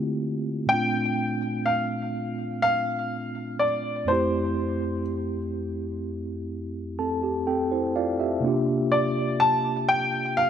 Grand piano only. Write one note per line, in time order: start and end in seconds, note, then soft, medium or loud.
0.69 1.69 G5 loud
1.66 2.61 F5 medium
2.62 3.63 F5 loud
3.59 4.10 D5 medium
4.08 5.01 C5 medium
8.92 9.42 D5 medium
9.40 9.90 A5 loud
9.89 10.39 G5 loud
10.37 10.50 F5 loud